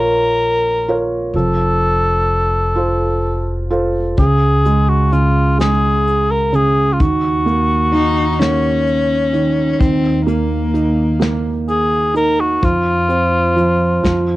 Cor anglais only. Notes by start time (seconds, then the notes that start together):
Already playing: A#4
1.36 A4
4.19 G#4
4.89 F#4
5.13 F4
5.60 G#4
6.32 A#4
6.56 G#4
6.93 F4
7.01 F#4
11.70 G#4
12.16 A#4
12.40 F#4
12.65 F4